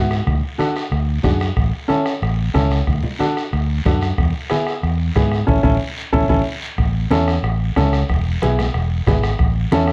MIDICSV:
0, 0, Header, 1, 5, 480
1, 0, Start_track
1, 0, Key_signature, 3, "major"
1, 0, Tempo, 325556
1, 403, Time_signature, 4, 2, 24, 8
1, 14633, End_track
2, 0, Start_track
2, 0, Title_t, "Upright piano"
2, 0, Program_c, 0, 0
2, 0, Note_on_c, 0, 59, 70
2, 0, Note_on_c, 0, 64, 70
2, 0, Note_on_c, 0, 66, 85
2, 251, Note_off_c, 0, 59, 0
2, 256, Note_off_c, 0, 64, 0
2, 257, Note_off_c, 0, 66, 0
2, 859, Note_on_c, 0, 62, 79
2, 869, Note_on_c, 0, 69, 82
2, 872, Note_on_c, 0, 66, 76
2, 1207, Note_off_c, 0, 62, 0
2, 1212, Note_off_c, 0, 69, 0
2, 1213, Note_off_c, 0, 66, 0
2, 1815, Note_on_c, 0, 62, 68
2, 1823, Note_on_c, 0, 66, 65
2, 1828, Note_on_c, 0, 68, 72
2, 2165, Note_off_c, 0, 62, 0
2, 2169, Note_off_c, 0, 66, 0
2, 2172, Note_off_c, 0, 68, 0
2, 2772, Note_on_c, 0, 61, 82
2, 2774, Note_on_c, 0, 64, 71
2, 2781, Note_on_c, 0, 69, 92
2, 3124, Note_off_c, 0, 61, 0
2, 3125, Note_off_c, 0, 64, 0
2, 3129, Note_off_c, 0, 69, 0
2, 3744, Note_on_c, 0, 61, 70
2, 3749, Note_on_c, 0, 64, 68
2, 3752, Note_on_c, 0, 69, 85
2, 4090, Note_off_c, 0, 61, 0
2, 4093, Note_off_c, 0, 64, 0
2, 4095, Note_off_c, 0, 69, 0
2, 4705, Note_on_c, 0, 62, 78
2, 4714, Note_on_c, 0, 66, 74
2, 4720, Note_on_c, 0, 69, 84
2, 5051, Note_off_c, 0, 62, 0
2, 5056, Note_off_c, 0, 66, 0
2, 5059, Note_off_c, 0, 69, 0
2, 5681, Note_on_c, 0, 62, 72
2, 5684, Note_on_c, 0, 66, 68
2, 5690, Note_on_c, 0, 69, 74
2, 6020, Note_off_c, 0, 62, 0
2, 6022, Note_off_c, 0, 66, 0
2, 6024, Note_off_c, 0, 69, 0
2, 6635, Note_on_c, 0, 59, 82
2, 6642, Note_on_c, 0, 64, 81
2, 6646, Note_on_c, 0, 68, 89
2, 6977, Note_off_c, 0, 59, 0
2, 6981, Note_off_c, 0, 64, 0
2, 6983, Note_off_c, 0, 68, 0
2, 7600, Note_on_c, 0, 59, 74
2, 7605, Note_on_c, 0, 64, 65
2, 7613, Note_on_c, 0, 68, 81
2, 7940, Note_off_c, 0, 59, 0
2, 7943, Note_off_c, 0, 64, 0
2, 7947, Note_off_c, 0, 68, 0
2, 8062, Note_on_c, 0, 61, 90
2, 8063, Note_on_c, 0, 64, 89
2, 8065, Note_on_c, 0, 69, 86
2, 8226, Note_off_c, 0, 61, 0
2, 8227, Note_off_c, 0, 64, 0
2, 8228, Note_off_c, 0, 69, 0
2, 8302, Note_on_c, 0, 64, 91
2, 8304, Note_on_c, 0, 61, 85
2, 8304, Note_on_c, 0, 69, 88
2, 8466, Note_off_c, 0, 64, 0
2, 8467, Note_off_c, 0, 69, 0
2, 8468, Note_off_c, 0, 61, 0
2, 9032, Note_on_c, 0, 69, 99
2, 9036, Note_on_c, 0, 61, 89
2, 9038, Note_on_c, 0, 64, 103
2, 9192, Note_off_c, 0, 69, 0
2, 9195, Note_off_c, 0, 61, 0
2, 9196, Note_off_c, 0, 64, 0
2, 9276, Note_on_c, 0, 61, 88
2, 9279, Note_on_c, 0, 64, 91
2, 9281, Note_on_c, 0, 69, 93
2, 9435, Note_off_c, 0, 61, 0
2, 9437, Note_off_c, 0, 64, 0
2, 9438, Note_off_c, 0, 69, 0
2, 10475, Note_on_c, 0, 61, 84
2, 10484, Note_on_c, 0, 64, 79
2, 10485, Note_on_c, 0, 69, 95
2, 10818, Note_off_c, 0, 61, 0
2, 10822, Note_off_c, 0, 64, 0
2, 10823, Note_off_c, 0, 69, 0
2, 11445, Note_on_c, 0, 61, 78
2, 11456, Note_on_c, 0, 64, 68
2, 11457, Note_on_c, 0, 69, 88
2, 11782, Note_off_c, 0, 61, 0
2, 11788, Note_off_c, 0, 64, 0
2, 11788, Note_off_c, 0, 69, 0
2, 12413, Note_on_c, 0, 59, 85
2, 12420, Note_on_c, 0, 64, 78
2, 12427, Note_on_c, 0, 68, 92
2, 12746, Note_off_c, 0, 59, 0
2, 12749, Note_off_c, 0, 64, 0
2, 12752, Note_off_c, 0, 68, 0
2, 13366, Note_on_c, 0, 59, 82
2, 13378, Note_on_c, 0, 64, 67
2, 13384, Note_on_c, 0, 68, 80
2, 13701, Note_off_c, 0, 59, 0
2, 13708, Note_off_c, 0, 64, 0
2, 13710, Note_off_c, 0, 68, 0
2, 14331, Note_on_c, 0, 61, 86
2, 14331, Note_on_c, 0, 64, 83
2, 14339, Note_on_c, 0, 69, 93
2, 14633, Note_off_c, 0, 61, 0
2, 14633, Note_off_c, 0, 64, 0
2, 14633, Note_off_c, 0, 69, 0
2, 14633, End_track
3, 0, Start_track
3, 0, Title_t, "Fingered electric bass"
3, 0, Program_c, 1, 33
3, 0, Note_on_c, 1, 44, 89
3, 303, Note_off_c, 1, 44, 0
3, 393, Note_on_c, 1, 38, 93
3, 589, Note_off_c, 1, 38, 0
3, 1351, Note_on_c, 1, 38, 92
3, 1740, Note_off_c, 1, 38, 0
3, 1832, Note_on_c, 1, 42, 80
3, 2221, Note_off_c, 1, 42, 0
3, 2312, Note_on_c, 1, 33, 103
3, 2509, Note_off_c, 1, 33, 0
3, 3278, Note_on_c, 1, 33, 96
3, 3664, Note_off_c, 1, 33, 0
3, 3752, Note_on_c, 1, 37, 85
3, 4142, Note_off_c, 1, 37, 0
3, 4237, Note_on_c, 1, 38, 99
3, 4432, Note_off_c, 1, 38, 0
3, 5203, Note_on_c, 1, 38, 102
3, 5588, Note_off_c, 1, 38, 0
3, 5685, Note_on_c, 1, 42, 93
3, 6070, Note_off_c, 1, 42, 0
3, 6164, Note_on_c, 1, 40, 97
3, 6357, Note_off_c, 1, 40, 0
3, 7124, Note_on_c, 1, 40, 92
3, 7510, Note_off_c, 1, 40, 0
3, 7602, Note_on_c, 1, 44, 89
3, 7989, Note_off_c, 1, 44, 0
3, 8078, Note_on_c, 1, 33, 95
3, 8262, Note_off_c, 1, 33, 0
3, 8320, Note_on_c, 1, 33, 92
3, 8503, Note_off_c, 1, 33, 0
3, 9034, Note_on_c, 1, 33, 85
3, 9219, Note_off_c, 1, 33, 0
3, 9270, Note_on_c, 1, 33, 91
3, 9457, Note_off_c, 1, 33, 0
3, 9999, Note_on_c, 1, 33, 102
3, 10387, Note_off_c, 1, 33, 0
3, 10473, Note_on_c, 1, 40, 99
3, 10863, Note_off_c, 1, 40, 0
3, 10950, Note_on_c, 1, 33, 88
3, 11341, Note_off_c, 1, 33, 0
3, 11447, Note_on_c, 1, 37, 87
3, 11831, Note_off_c, 1, 37, 0
3, 11933, Note_on_c, 1, 28, 103
3, 12314, Note_off_c, 1, 28, 0
3, 12417, Note_on_c, 1, 35, 93
3, 12797, Note_off_c, 1, 35, 0
3, 12894, Note_on_c, 1, 28, 87
3, 13274, Note_off_c, 1, 28, 0
3, 13375, Note_on_c, 1, 32, 94
3, 13755, Note_off_c, 1, 32, 0
3, 13845, Note_on_c, 1, 33, 102
3, 14229, Note_off_c, 1, 33, 0
3, 14324, Note_on_c, 1, 40, 102
3, 14633, Note_off_c, 1, 40, 0
3, 14633, End_track
4, 0, Start_track
4, 0, Title_t, "Two-headed folk drums"
4, 161, Note_on_c, 9, 37, 84
4, 308, Note_off_c, 9, 37, 0
4, 399, Note_on_c, 9, 36, 83
4, 400, Note_on_c, 9, 37, 77
4, 547, Note_off_c, 9, 36, 0
4, 547, Note_off_c, 9, 37, 0
4, 891, Note_on_c, 9, 37, 81
4, 1038, Note_off_c, 9, 37, 0
4, 1128, Note_on_c, 9, 37, 86
4, 1276, Note_off_c, 9, 37, 0
4, 1357, Note_on_c, 9, 37, 78
4, 1504, Note_off_c, 9, 37, 0
4, 1835, Note_on_c, 9, 36, 74
4, 1836, Note_on_c, 9, 37, 79
4, 1982, Note_off_c, 9, 36, 0
4, 1983, Note_off_c, 9, 37, 0
4, 2081, Note_on_c, 9, 37, 81
4, 2228, Note_off_c, 9, 37, 0
4, 2311, Note_on_c, 9, 36, 71
4, 2312, Note_on_c, 9, 37, 74
4, 2459, Note_off_c, 9, 36, 0
4, 2459, Note_off_c, 9, 37, 0
4, 2796, Note_on_c, 9, 37, 79
4, 2943, Note_off_c, 9, 37, 0
4, 3033, Note_on_c, 9, 37, 82
4, 3181, Note_off_c, 9, 37, 0
4, 3289, Note_on_c, 9, 37, 76
4, 3436, Note_off_c, 9, 37, 0
4, 3755, Note_on_c, 9, 37, 74
4, 3758, Note_on_c, 9, 36, 83
4, 3902, Note_off_c, 9, 37, 0
4, 3905, Note_off_c, 9, 36, 0
4, 4005, Note_on_c, 9, 37, 79
4, 4152, Note_off_c, 9, 37, 0
4, 4235, Note_on_c, 9, 37, 70
4, 4238, Note_on_c, 9, 36, 79
4, 4383, Note_off_c, 9, 37, 0
4, 4386, Note_off_c, 9, 36, 0
4, 4724, Note_on_c, 9, 37, 78
4, 4872, Note_off_c, 9, 37, 0
4, 4970, Note_on_c, 9, 37, 78
4, 5117, Note_off_c, 9, 37, 0
4, 5206, Note_on_c, 9, 37, 81
4, 5354, Note_off_c, 9, 37, 0
4, 5687, Note_on_c, 9, 36, 81
4, 5695, Note_on_c, 9, 37, 82
4, 5834, Note_off_c, 9, 36, 0
4, 5842, Note_off_c, 9, 37, 0
4, 5934, Note_on_c, 9, 37, 81
4, 6081, Note_off_c, 9, 37, 0
4, 6164, Note_on_c, 9, 36, 81
4, 6168, Note_on_c, 9, 37, 82
4, 6312, Note_off_c, 9, 36, 0
4, 6315, Note_off_c, 9, 37, 0
4, 6630, Note_on_c, 9, 37, 86
4, 6777, Note_off_c, 9, 37, 0
4, 6881, Note_on_c, 9, 37, 90
4, 7028, Note_off_c, 9, 37, 0
4, 7128, Note_on_c, 9, 37, 73
4, 7275, Note_off_c, 9, 37, 0
4, 7605, Note_on_c, 9, 36, 84
4, 7605, Note_on_c, 9, 37, 79
4, 7752, Note_off_c, 9, 36, 0
4, 7753, Note_off_c, 9, 37, 0
4, 7838, Note_on_c, 9, 37, 89
4, 7985, Note_off_c, 9, 37, 0
4, 8081, Note_on_c, 9, 36, 84
4, 8228, Note_off_c, 9, 36, 0
4, 8319, Note_on_c, 9, 36, 99
4, 8466, Note_off_c, 9, 36, 0
4, 9038, Note_on_c, 9, 36, 89
4, 9186, Note_off_c, 9, 36, 0
4, 9277, Note_on_c, 9, 36, 91
4, 9425, Note_off_c, 9, 36, 0
4, 9999, Note_on_c, 9, 37, 77
4, 10000, Note_on_c, 9, 36, 76
4, 10146, Note_off_c, 9, 37, 0
4, 10148, Note_off_c, 9, 36, 0
4, 10488, Note_on_c, 9, 37, 82
4, 10635, Note_off_c, 9, 37, 0
4, 10730, Note_on_c, 9, 37, 87
4, 10878, Note_off_c, 9, 37, 0
4, 10969, Note_on_c, 9, 37, 90
4, 11117, Note_off_c, 9, 37, 0
4, 11447, Note_on_c, 9, 37, 89
4, 11451, Note_on_c, 9, 36, 82
4, 11595, Note_off_c, 9, 37, 0
4, 11599, Note_off_c, 9, 36, 0
4, 11692, Note_on_c, 9, 37, 86
4, 11840, Note_off_c, 9, 37, 0
4, 11936, Note_on_c, 9, 37, 76
4, 11937, Note_on_c, 9, 36, 76
4, 12083, Note_off_c, 9, 37, 0
4, 12084, Note_off_c, 9, 36, 0
4, 12416, Note_on_c, 9, 37, 79
4, 12564, Note_off_c, 9, 37, 0
4, 12662, Note_on_c, 9, 37, 88
4, 12810, Note_off_c, 9, 37, 0
4, 12890, Note_on_c, 9, 37, 81
4, 13038, Note_off_c, 9, 37, 0
4, 13372, Note_on_c, 9, 36, 83
4, 13377, Note_on_c, 9, 37, 84
4, 13520, Note_off_c, 9, 36, 0
4, 13525, Note_off_c, 9, 37, 0
4, 13617, Note_on_c, 9, 37, 89
4, 13764, Note_off_c, 9, 37, 0
4, 13846, Note_on_c, 9, 37, 77
4, 13851, Note_on_c, 9, 36, 81
4, 13993, Note_off_c, 9, 37, 0
4, 13998, Note_off_c, 9, 36, 0
4, 14331, Note_on_c, 9, 37, 86
4, 14478, Note_off_c, 9, 37, 0
4, 14560, Note_on_c, 9, 37, 92
4, 14633, Note_off_c, 9, 37, 0
4, 14633, End_track
5, 0, Start_track
5, 0, Title_t, "Drums"
5, 164, Note_on_c, 9, 73, 59
5, 312, Note_off_c, 9, 73, 0
5, 402, Note_on_c, 9, 74, 66
5, 404, Note_on_c, 9, 63, 36
5, 550, Note_off_c, 9, 74, 0
5, 551, Note_off_c, 9, 63, 0
5, 874, Note_on_c, 9, 63, 78
5, 881, Note_on_c, 9, 73, 70
5, 1022, Note_off_c, 9, 63, 0
5, 1028, Note_off_c, 9, 73, 0
5, 1117, Note_on_c, 9, 73, 65
5, 1265, Note_off_c, 9, 73, 0
5, 1360, Note_on_c, 9, 74, 63
5, 1363, Note_on_c, 9, 63, 32
5, 1508, Note_off_c, 9, 74, 0
5, 1511, Note_off_c, 9, 63, 0
5, 1825, Note_on_c, 9, 73, 63
5, 1831, Note_on_c, 9, 63, 87
5, 1831, Note_on_c, 9, 64, 90
5, 1973, Note_off_c, 9, 73, 0
5, 1978, Note_off_c, 9, 63, 0
5, 1978, Note_off_c, 9, 64, 0
5, 2069, Note_on_c, 9, 73, 62
5, 2217, Note_off_c, 9, 73, 0
5, 2315, Note_on_c, 9, 74, 68
5, 2316, Note_on_c, 9, 63, 32
5, 2462, Note_off_c, 9, 74, 0
5, 2463, Note_off_c, 9, 63, 0
5, 2794, Note_on_c, 9, 73, 69
5, 2800, Note_on_c, 9, 63, 71
5, 2942, Note_off_c, 9, 73, 0
5, 2947, Note_off_c, 9, 63, 0
5, 3034, Note_on_c, 9, 73, 69
5, 3181, Note_off_c, 9, 73, 0
5, 3276, Note_on_c, 9, 74, 60
5, 3278, Note_on_c, 9, 63, 35
5, 3424, Note_off_c, 9, 74, 0
5, 3425, Note_off_c, 9, 63, 0
5, 3766, Note_on_c, 9, 63, 89
5, 3766, Note_on_c, 9, 73, 65
5, 3913, Note_off_c, 9, 73, 0
5, 3914, Note_off_c, 9, 63, 0
5, 3997, Note_on_c, 9, 73, 62
5, 4144, Note_off_c, 9, 73, 0
5, 4242, Note_on_c, 9, 74, 71
5, 4250, Note_on_c, 9, 63, 34
5, 4390, Note_off_c, 9, 74, 0
5, 4397, Note_off_c, 9, 63, 0
5, 4473, Note_on_c, 9, 64, 73
5, 4620, Note_off_c, 9, 64, 0
5, 4718, Note_on_c, 9, 73, 73
5, 4723, Note_on_c, 9, 63, 71
5, 4865, Note_off_c, 9, 73, 0
5, 4871, Note_off_c, 9, 63, 0
5, 4970, Note_on_c, 9, 73, 66
5, 5117, Note_off_c, 9, 73, 0
5, 5216, Note_on_c, 9, 74, 62
5, 5220, Note_on_c, 9, 63, 32
5, 5363, Note_off_c, 9, 74, 0
5, 5368, Note_off_c, 9, 63, 0
5, 5689, Note_on_c, 9, 73, 63
5, 5693, Note_on_c, 9, 63, 87
5, 5693, Note_on_c, 9, 64, 83
5, 5836, Note_off_c, 9, 73, 0
5, 5840, Note_off_c, 9, 63, 0
5, 5840, Note_off_c, 9, 64, 0
5, 5917, Note_on_c, 9, 73, 68
5, 6064, Note_off_c, 9, 73, 0
5, 6164, Note_on_c, 9, 74, 67
5, 6176, Note_on_c, 9, 63, 36
5, 6311, Note_off_c, 9, 74, 0
5, 6324, Note_off_c, 9, 63, 0
5, 6641, Note_on_c, 9, 73, 75
5, 6660, Note_on_c, 9, 63, 72
5, 6789, Note_off_c, 9, 73, 0
5, 6807, Note_off_c, 9, 63, 0
5, 6892, Note_on_c, 9, 73, 69
5, 7039, Note_off_c, 9, 73, 0
5, 7133, Note_on_c, 9, 63, 33
5, 7137, Note_on_c, 9, 74, 61
5, 7280, Note_off_c, 9, 63, 0
5, 7285, Note_off_c, 9, 74, 0
5, 7618, Note_on_c, 9, 63, 82
5, 7618, Note_on_c, 9, 73, 61
5, 7765, Note_off_c, 9, 63, 0
5, 7765, Note_off_c, 9, 73, 0
5, 7860, Note_on_c, 9, 73, 66
5, 8008, Note_off_c, 9, 73, 0
5, 8083, Note_on_c, 9, 63, 97
5, 8092, Note_on_c, 9, 74, 90
5, 8231, Note_off_c, 9, 63, 0
5, 8239, Note_off_c, 9, 74, 0
5, 8328, Note_on_c, 9, 74, 93
5, 8330, Note_on_c, 9, 63, 93
5, 8476, Note_off_c, 9, 74, 0
5, 8478, Note_off_c, 9, 63, 0
5, 9046, Note_on_c, 9, 74, 98
5, 9049, Note_on_c, 9, 63, 93
5, 9193, Note_off_c, 9, 74, 0
5, 9196, Note_off_c, 9, 63, 0
5, 9280, Note_on_c, 9, 74, 104
5, 9291, Note_on_c, 9, 63, 93
5, 9428, Note_off_c, 9, 74, 0
5, 9438, Note_off_c, 9, 63, 0
5, 10004, Note_on_c, 9, 74, 72
5, 10006, Note_on_c, 9, 63, 33
5, 10152, Note_off_c, 9, 74, 0
5, 10153, Note_off_c, 9, 63, 0
5, 10485, Note_on_c, 9, 63, 90
5, 10493, Note_on_c, 9, 73, 78
5, 10632, Note_off_c, 9, 63, 0
5, 10640, Note_off_c, 9, 73, 0
5, 10737, Note_on_c, 9, 73, 68
5, 10884, Note_off_c, 9, 73, 0
5, 10968, Note_on_c, 9, 74, 65
5, 10980, Note_on_c, 9, 63, 33
5, 11116, Note_off_c, 9, 74, 0
5, 11128, Note_off_c, 9, 63, 0
5, 11459, Note_on_c, 9, 73, 66
5, 11464, Note_on_c, 9, 63, 91
5, 11606, Note_off_c, 9, 73, 0
5, 11611, Note_off_c, 9, 63, 0
5, 11692, Note_on_c, 9, 73, 68
5, 11840, Note_off_c, 9, 73, 0
5, 11929, Note_on_c, 9, 74, 73
5, 11950, Note_on_c, 9, 63, 35
5, 12076, Note_off_c, 9, 74, 0
5, 12098, Note_off_c, 9, 63, 0
5, 12407, Note_on_c, 9, 73, 75
5, 12426, Note_on_c, 9, 63, 91
5, 12554, Note_off_c, 9, 73, 0
5, 12573, Note_off_c, 9, 63, 0
5, 12666, Note_on_c, 9, 73, 72
5, 12673, Note_on_c, 9, 64, 75
5, 12814, Note_off_c, 9, 73, 0
5, 12820, Note_off_c, 9, 64, 0
5, 12906, Note_on_c, 9, 74, 69
5, 12908, Note_on_c, 9, 63, 36
5, 13053, Note_off_c, 9, 74, 0
5, 13055, Note_off_c, 9, 63, 0
5, 13380, Note_on_c, 9, 73, 66
5, 13389, Note_on_c, 9, 63, 95
5, 13389, Note_on_c, 9, 64, 93
5, 13528, Note_off_c, 9, 73, 0
5, 13536, Note_off_c, 9, 63, 0
5, 13536, Note_off_c, 9, 64, 0
5, 13612, Note_on_c, 9, 73, 65
5, 13759, Note_off_c, 9, 73, 0
5, 13855, Note_on_c, 9, 74, 68
5, 13868, Note_on_c, 9, 63, 33
5, 14002, Note_off_c, 9, 74, 0
5, 14015, Note_off_c, 9, 63, 0
5, 14333, Note_on_c, 9, 63, 90
5, 14334, Note_on_c, 9, 73, 73
5, 14481, Note_off_c, 9, 63, 0
5, 14481, Note_off_c, 9, 73, 0
5, 14584, Note_on_c, 9, 73, 66
5, 14633, Note_off_c, 9, 73, 0
5, 14633, End_track
0, 0, End_of_file